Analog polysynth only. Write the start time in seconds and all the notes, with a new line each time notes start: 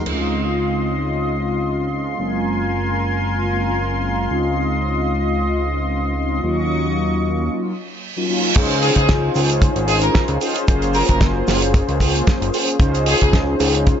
0.05 C4 C#4 D#4 F4
1.92 C#4
2.17 G#3 A#3 C4 C#4 F4
3.50 G#3 A#3 C4 C#4 F4
4.30 G#3 C4 C#4 D#4 F4
6.16 C4 C#4 D#4 F4
6.42 F#3 A#3 C#4 D#4 F4
8.16 F#3 A#3 C#4 D#4 F4
8.28 F#3 A#3 C#4 D#4 F4
8.54 C#4 D#4 F4 G#4 C5
10.41 C#4 D#4 F4 G#4 C5
10.67 A#3 C#4 F4 G#4 C5
12.00 A#3 C#4 F4 G#4 C5
12.79 C#4 D#4 F4 G#4 C5